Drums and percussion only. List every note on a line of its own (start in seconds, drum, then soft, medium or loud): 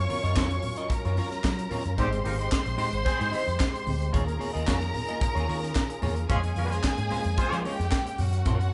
0.10 open hi-hat medium
0.10 muted conga soft
0.10 high conga medium
0.26 closed hi-hat medium
0.36 kick loud
0.36 snare loud
0.36 clap loud
0.36 muted conga soft
0.36 high conga medium
0.50 closed hi-hat soft
0.62 open hi-hat medium
0.62 muted conga soft
0.62 low conga medium
0.76 closed hi-hat medium
0.90 kick loud
0.90 closed hi-hat medium
1.05 closed hi-hat soft
1.17 open hi-hat medium
1.17 high conga medium
1.31 snare soft
1.31 closed hi-hat soft
1.44 kick loud
1.44 snare loud
1.44 clap medium
1.59 closed hi-hat medium
1.71 open hi-hat medium
1.71 high conga medium
1.71 low conga medium
1.85 closed hi-hat soft
1.98 kick loud
1.98 closed hi-hat medium
1.98 muted conga soft
1.98 low conga medium
2.12 closed hi-hat soft
2.25 open hi-hat medium
2.25 high conga medium
2.41 closed hi-hat medium
2.52 kick loud
2.52 snare loud
2.52 clap loud
2.52 muted conga soft
2.52 high conga medium
2.66 closed hi-hat soft
2.78 open hi-hat medium
2.78 muted conga soft
2.78 low conga medium
2.92 closed hi-hat medium
3.06 kick loud
3.06 closed hi-hat medium
3.06 muted conga soft
3.21 closed hi-hat soft
3.32 open hi-hat medium
3.32 high conga medium
3.49 closed hi-hat medium
3.60 kick loud
3.60 snare loud
3.60 clap medium
3.60 muted conga soft
3.75 closed hi-hat medium
3.87 open hi-hat medium
3.87 muted conga soft
3.87 high conga medium
3.87 low conga medium
4.02 closed hi-hat soft
4.14 kick loud
4.14 closed hi-hat medium
4.14 muted conga soft
4.14 low conga medium
4.28 closed hi-hat soft
4.41 open hi-hat medium
4.41 muted conga soft
4.41 high conga medium
4.57 closed hi-hat medium
4.67 kick loud
4.67 snare loud
4.67 clap medium
4.67 muted conga soft
4.67 high conga medium
4.81 closed hi-hat soft
4.94 open hi-hat medium
4.94 muted conga soft
4.94 low conga medium
5.08 closed hi-hat medium
5.21 kick loud
5.21 closed hi-hat medium
5.36 closed hi-hat soft
5.48 open hi-hat medium
5.48 high conga medium
5.63 snare soft
5.63 closed hi-hat medium
5.75 kick loud
5.75 snare loud
5.75 clap loud
5.75 muted conga soft
5.90 closed hi-hat medium
6.02 open hi-hat medium
6.02 muted conga soft
6.02 high conga medium
6.02 low conga medium
6.16 closed hi-hat soft
6.29 kick loud
6.29 closed hi-hat medium
6.29 low conga medium
6.43 closed hi-hat medium
6.56 open hi-hat medium
6.56 muted conga soft
6.56 high conga medium
6.72 closed hi-hat medium
6.84 kick loud
6.84 snare loud
6.84 clap loud
6.84 high conga medium
6.97 closed hi-hat soft
7.10 open hi-hat medium
7.10 muted conga soft
7.10 low conga medium
7.24 closed hi-hat medium
7.38 kick loud
7.38 closed hi-hat medium
7.38 muted conga soft
7.52 closed hi-hat medium
7.64 open hi-hat medium
7.64 high conga medium
7.80 snare soft
7.80 closed hi-hat medium
7.91 kick loud
7.91 snare loud
7.91 clap medium
7.91 muted conga soft
8.06 closed hi-hat medium
8.18 open hi-hat medium
8.18 high conga medium
8.18 low conga medium
8.33 closed hi-hat medium
8.45 kick loud
8.45 closed hi-hat medium
8.45 muted conga soft
8.45 low conga medium
8.60 closed hi-hat soft